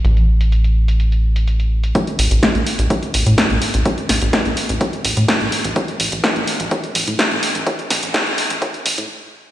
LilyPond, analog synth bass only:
\new Staff \with { instrumentName = "Analog synth bass" } { \clef bass \time 4/4 \key c \major \tempo 4 = 126 a,,1 | r8 a,,16 a,,16 r16 a,,16 r16 a,,16 r8 a,,16 a,16 r16 a,,16 r16 a,,16 | r8 a,,16 a,,16 r16 a,,16 r16 a,,16 r8 a,,16 a,16 r16 a,,16 r16 a,,16 | r8 a,,16 a,,16 r16 a,,16 r16 a,,16 r8 a,,16 a,16 r16 a,,16 r16 a,,16 |
r8 a,,16 a,,16 r16 a,,16 r16 a,,16 r8 a,,16 a,16 r4 | }